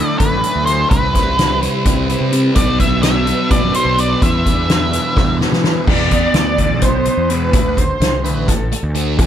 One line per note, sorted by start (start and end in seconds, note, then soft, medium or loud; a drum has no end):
0.00 0.17 D3 medium
0.00 0.89 F#3 medium
0.00 0.18 A3 medium
0.00 0.19 D4 medium
0.00 0.86 D4 medium
0.00 2.52 E4 medium
0.00 0.89 A4 medium
0.00 0.15 E5 loud
0.18 0.65 D3 medium
0.18 0.34 D3 medium
0.18 0.43 A3 medium
0.18 0.41 D4 medium
0.18 0.65 B4 medium
0.18 kick medium
0.18 closed hi-hat medium
0.32 0.41 A1 medium
0.42 0.66 A3 medium
0.42 0.67 D4 medium
0.42 closed hi-hat medium
0.56 0.84 D2 medium
0.66 0.89 D3 loud
0.66 0.89 A3 medium
0.66 0.90 D4 loud
0.66 0.88 C5 medium
0.66 snare soft
0.66 closed hi-hat medium
0.89 1.66 C2 loud
0.89 1.36 C3 loud
0.89 1.15 G3 medium
0.89 2.55 G3 medium
0.89 1.12 C4 loud
0.89 2.55 C4 medium
0.89 1.57 B4 medium
0.89 2.55 B4 medium
0.89 kick loud
0.89 closed hi-hat medium
1.14 1.37 G3 medium
1.14 1.38 C4 medium
1.14 kick medium
1.14 snare soft
1.14 closed hi-hat medium
1.37 1.63 C3 medium
1.37 1.62 G3 medium
1.37 1.61 C4 medium
1.37 snare loud
1.37 closed hi-hat medium
1.62 1.84 C3 medium
1.62 1.86 G3 medium
1.62 1.86 C4 loud
1.62 snare soft
1.62 closed hi-hat medium
1.85 2.14 C2 medium
1.85 2.31 C3 medium
1.85 2.11 G3 medium
1.85 2.08 C4 medium
1.85 kick medium
1.85 snare soft
1.85 closed hi-hat medium
2.09 2.32 G3 medium
2.09 2.33 C4 medium
2.09 closed hi-hat medium
2.21 2.49 C3 medium
2.32 2.54 C3 medium
2.32 2.55 G3 loud
2.32 2.56 C4 medium
2.32 closed hi-hat medium
2.56 3.31 B1 loud
2.56 3.01 B2 loud
2.56 4.20 F#3 medium
2.56 2.80 F#3 loud
2.56 4.20 B3 medium
2.56 2.79 B3 loud
2.56 4.20 D4 medium
2.56 5.84 B4 medium
2.56 2.78 D5 loud
2.56 kick loud
2.56 closed hi-hat loud
2.79 3.02 F#3 medium
2.79 3.05 B3 medium
2.79 3.02 E5 loud
2.79 kick medium
2.79 closed hi-hat medium
3.03 3.27 B2 medium
3.03 3.26 F#3 medium
3.03 3.26 B3 medium
3.03 3.51 E5 loud
3.03 snare loud
3.03 closed hi-hat medium
3.26 3.49 B2 medium
3.26 3.50 F#3 medium
3.26 3.52 B3 medium
3.26 closed hi-hat medium
3.50 3.97 B2 medium
3.50 3.63 B2 medium
3.50 3.76 F#3 medium
3.50 3.74 B3 medium
3.50 3.73 D5 loud
3.50 kick loud
3.50 closed hi-hat medium
3.61 3.71 F#2 medium
3.74 3.98 F#3 medium
3.74 4.00 B3 medium
3.74 3.99 C5 medium
3.74 closed hi-hat medium
3.85 4.14 B1 loud
3.98 4.20 B2 medium
3.98 4.21 F#3 medium
3.98 7.50 B3 medium
3.98 4.22 D5 medium
3.98 closed hi-hat medium
4.21 4.68 E2 loud
4.21 4.97 E2 loud
4.21 4.47 B2 loud
4.21 4.45 E3 loud
4.21 5.86 G3 medium
4.21 5.86 D4 medium
4.21 5.86 E4 medium
4.21 5.37 E5 medium
4.21 kick loud
4.21 closed hi-hat medium
4.46 4.69 B2 medium
4.46 4.70 E3 medium
4.46 kick medium
4.46 closed hi-hat medium
4.69 4.93 E2 medium
4.69 4.92 B2 medium
4.69 4.91 E3 medium
4.69 snare loud
4.69 closed hi-hat medium
4.92 5.15 E2 medium
4.92 5.16 B2 medium
4.92 5.17 E3 medium
4.92 snare soft
4.92 closed hi-hat medium
5.16 5.62 E2 medium
5.16 5.45 E2 medium
5.16 5.41 B2 medium
5.16 5.39 E3 medium
5.16 kick loud
5.16 snare medium
5.40 5.64 B2 medium
5.40 5.65 E3 medium
5.40 snare medium
5.52 5.80 E3 medium
5.52 snare medium
5.63 5.86 E2 medium
5.63 5.87 B2 medium
5.63 5.87 E3 loud
5.63 snare medium
5.87 6.25 E2 medium
5.87 6.11 E2 medium
5.87 6.12 B2 medium
5.87 6.11 E3 medium
5.87 6.79 D5 loud
5.87 kick loud
5.87 crash loud
6.11 muted distorted electric guitar stroke soft
6.11 kick medium
6.11 closed hi-hat medium
6.34 6.71 D2 loud
6.34 muted distorted electric guitar stroke soft
6.34 snare loud
6.34 closed hi-hat medium
6.58 6.82 E2 medium
6.58 6.82 B2 medium
6.58 6.82 E3 medium
6.58 kick medium
6.58 closed hi-hat medium
6.69 7.07 B1 medium
6.82 7.30 C5 loud
6.82 muted distorted electric guitar stroke soft
6.82 kick medium
6.82 snare soft
6.82 closed hi-hat medium
7.05 muted distorted electric guitar stroke soft
7.05 closed hi-hat medium
7.17 7.53 E2 medium
7.29 7.53 E2 medium
7.29 7.53 B2 medium
7.29 7.54 E3 loud
7.29 7.77 B4 loud
7.29 closed hi-hat medium
7.53 7.91 D2 medium
7.53 7.77 D3 medium
7.53 7.77 A3 loud
7.53 7.76 D4 medium
7.53 kick loud
7.53 closed hi-hat medium
7.76 8.24 C5 loud
7.76 muted distorted electric guitar stroke soft
7.76 kick medium
7.76 closed hi-hat medium
8.00 8.35 C2 loud
8.00 muted distorted electric guitar stroke soft
8.00 snare loud
8.00 closed hi-hat medium
8.24 8.47 D3 medium
8.24 8.48 A3 medium
8.24 8.48 D4 medium
8.24 8.48 B4 medium
8.24 closed hi-hat medium
8.35 8.73 A1 medium
8.48 8.95 A4 medium
8.48 muted distorted electric guitar stroke soft
8.48 kick medium
8.48 snare soft
8.48 closed hi-hat medium
8.72 muted distorted electric guitar stroke medium
8.72 closed hi-hat medium
8.83 9.19 D2 loud
8.95 9.18 D3 medium
8.95 9.19 A3 medium
8.95 9.19 D4 loud
8.95 closed hi-hat medium
9.18 9.27 E2 medium
9.18 9.27 E2 loud
9.18 9.27 B2 loud
9.18 9.27 E3 loud
9.18 kick loud
9.18 closed hi-hat medium